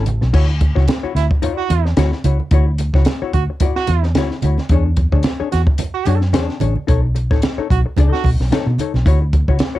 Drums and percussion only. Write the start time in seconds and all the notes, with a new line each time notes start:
0.06 closed hi-hat, high conga
0.21 snare
0.34 kick, crash
0.61 kick, closed hi-hat, muted conga
0.76 kick, snare
0.88 snare, closed hi-hat, high conga
1.16 snare, closed hi-hat
1.31 kick
1.42 closed hi-hat, muted conga, low conga
1.70 closed hi-hat, muted conga
1.86 snare
1.97 snare, closed hi-hat, high conga
2.12 snare
2.24 closed hi-hat, high conga
2.40 high conga
2.51 kick, closed hi-hat
2.78 closed hi-hat, muted conga
2.94 kick, snare
3.05 snare, closed hi-hat, high conga
3.33 kick, closed hi-hat
3.60 kick, closed hi-hat, muted conga, low conga
3.76 snare
3.87 closed hi-hat, muted conga
4.03 snare
4.15 snare, closed hi-hat, high conga
4.31 snare
4.42 closed hi-hat, high conga
4.58 snare, high conga
4.69 kick, closed hi-hat
4.97 kick, closed hi-hat, muted conga
5.12 kick
5.23 snare, closed hi-hat, high conga
5.52 snare, closed hi-hat
5.67 kick
5.78 closed hi-hat, muted conga, low conga
6.05 closed hi-hat, muted conga
6.21 snare
6.33 snare, closed hi-hat, high conga
6.49 snare
6.60 closed hi-hat, high conga
6.75 high conga
6.88 kick, closed hi-hat
7.16 closed hi-hat, muted conga
7.31 kick, snare
7.42 snare, closed hi-hat, high conga
7.70 kick, closed hi-hat
7.97 kick, closed hi-hat, muted conga, low conga
8.14 snare
8.24 kick, open hi-hat, muted conga
8.41 snare
8.51 snare, closed hi-hat, high conga
8.79 closed hi-hat, high conga
8.94 snare, high conga
9.06 kick, closed hi-hat
9.33 kick, closed hi-hat, muted conga
9.48 kick
9.59 snare, closed hi-hat, high conga